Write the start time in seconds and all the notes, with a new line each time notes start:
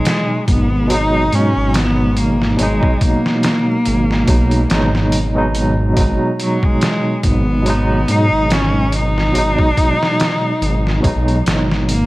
Already playing: B2 F#3 G#3 D#4
0.05 snare, closed hi-hat
0.48 G#1 B3, kick, closed hi-hat
0.87 B2 F#3, closed hi-hat
0.91 G#3 D#4
1.32 G#2 C#4, closed hi-hat
1.56 G#1
1.74 B3, snare, closed hi-hat
2.17 A#3, closed hi-hat
2.42 snare
2.56 G#1 B2 F#3, closed hi-hat
2.61 G#3 D#4
2.83 kick
3.01 A#3, kick, closed hi-hat
3.26 snare
3.43 snare, closed hi-hat
3.86 G#1, closed hi-hat
4.11 snare
4.27 B1 B2 F#3 G#3 D#4, kick, closed hi-hat
4.51 closed hi-hat
4.69 G#1 B2 F#3 G#3 D#4, snare, closed hi-hat
4.95 snare
5.12 closed hi-hat
5.35 B2 F#3 G#3 D#4
5.55 closed hi-hat
5.94 G#1 B2 F#3, kick, closed hi-hat
5.98 G#3 D#4
6.39 F#3, closed hi-hat
6.63 G#3, kick
6.81 snare, closed hi-hat
7.23 G#1 B3, kick, closed hi-hat
7.63 B2 F#3, closed hi-hat
7.68 G#3 D#4
8.08 G#2 D#4, closed hi-hat
8.32 G#1
8.50 C#4, snare, closed hi-hat
8.92 D#4, closed hi-hat
9.18 snare
9.32 G#1 B2 F#3, closed hi-hat
9.36 G#3 D#4
9.59 kick
9.77 kick, closed hi-hat
10.03 snare
10.20 snare, closed hi-hat
10.61 G#1, closed hi-hat
10.87 snare
11.01 B1 B2 F#3, kick, closed hi-hat
11.05 G#3 D#4
11.28 closed hi-hat
11.46 G#1, snare, closed hi-hat
11.71 snare
11.89 A#3, closed hi-hat